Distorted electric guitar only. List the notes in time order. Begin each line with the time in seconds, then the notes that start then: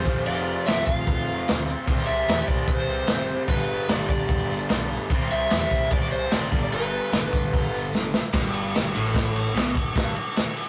Already playing: C4
0.04 F2 C3 F3
1.87 C3 G3 C4
3.47 G2 D3 G3
5.10 C3 G3 C4
6.50 G2 D3 G3
8.34 G2
8.94 A2
9.54 B2
9.75 G2
9.95 G2